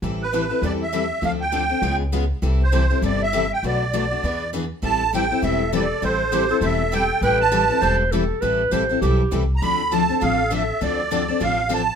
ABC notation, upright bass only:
X:1
M:4/4
L:1/8
Q:"Swing" 1/4=200
K:Am
V:1 name="Upright bass" clef=bass
A,,,4 E,,4 | D,,4 ^C,,4 | C,,4 G,,,4 | B,,,4 E,,4 |
A,,,4 E,,,4 | A,,,4 E,,,4 | A,,,4 E,,,4 | A,,,2 A,,,2 B,,,2 C,,2 |
D,,4 A,,,4 | D,,4 A,,,4 |]